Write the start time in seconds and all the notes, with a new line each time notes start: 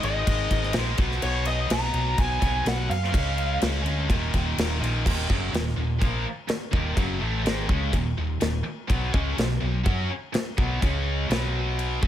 0.02 G#1 G#2 D#3 G#3 D#5, crash
0.27 G#1, kick, crash
0.51 G#1, kick, crash
0.63 snare
0.73 A#1 G#2 D#3 G#3, snare, crash
0.97 B1 B2 F#3 B3, kick, crash
1.11 snare
1.22 B1 C#5, crash
1.45 D#5, crash
1.68 B1 B2 F#3 B3, snare, crash
1.72 A#5
1.94 B1, crash
2.18 B1 G#5, kick, crash
2.40 B1 B2 F#3 B3, kick, crash
2.65 B1 F#5, snare, crash
2.90 F#2 F5, crash
3.04 snare
3.11 C#2 C#3 G#3 C#4, kick, crash
3.38 crash
3.61 C#2, snare, crash
3.83 D2 C#3 G#3 C#4, crash
4.07 D#1 D#2 A#2 D#3, kick, crash
4.34 D#1, kick, crash
4.57 D#1, snare, crash
4.80 A#1 D#2 A#2 D#3, crash
5.05 D#1 D#2 A#2 D#3, kick, crash
5.28 F#1 F#2 C#3 F#3, kick
5.52 D#1 D#2 A#2, snare, crash
5.68 snare
5.76 D#1 D#2 A#2
5.99 A#1 A#2 F3 A#3, kick, crash
6.48 muted distorted electric guitar stroke, muted fingered electric bass stroke, snare, crash
6.71 D#1 D#2 A#2 D#3, kick
6.96 F#1 F#2 C#3 F#3, kick, crash
7.19 A1 A2 E3 A3
7.43 G#1 G#2 D#3 G#3, snare, crash
7.68 C#2 C#3 G#3 C#4, kick
7.92 D#1 D#2 A#2, kick, crash
8.17 D#1 D#2 A#2
8.40 D#1 D#2 A#2, snare, crash
8.64 muted distorted electric guitar stroke
8.88 B1 B2 F#3 B3, kick, crash
9.12 C#2 C#3 G#3 C#4, kick
9.36 B1 B2 F#3, snare, crash
9.51 snare
9.60 B1 B2 F#3
9.84 F#2 F#3 C#4 F#4, kick, crash
10.33 muted distorted electric guitar stroke, muted fingered electric bass stroke, snare, crash
10.58 B1 B2 F#3 B3, kick
10.81 C#2 C#3 G#3 C#4, kick, crash
11.28 B1 B2 F#3 B3, snare, crash
11.79 crash
12.02 F#2 F#3 C#4 F#4, kick